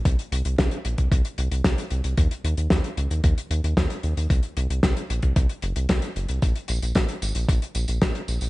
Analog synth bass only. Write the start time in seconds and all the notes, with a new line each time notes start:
0.05 C2
0.32 C2
0.45 C2
0.58 C2
0.85 A#1
0.98 C2
1.12 C2
1.38 C2
1.51 C2
1.65 C2
1.91 C2
2.04 C2
2.18 D#2
2.44 D#2
2.57 D#2
2.71 D#2
2.97 C#2
3.10 D#2
3.24 D#2
3.50 D#2
3.64 D#2
3.77 D#2
4.04 D#2
4.17 D#2
4.30 C2
4.57 C2
4.70 C2
4.83 C2
5.10 A#1
5.23 C2
5.36 C2
5.63 F#1
5.76 C2
5.89 C2
6.16 F#1
6.29 C2
6.42 A#1
6.69 A#1
6.82 A#1
6.95 A#1
7.22 G#1
7.35 A#1
7.49 A#1
7.75 A#1
7.88 A#1
8.02 A#1
8.28 A#1
8.41 A#1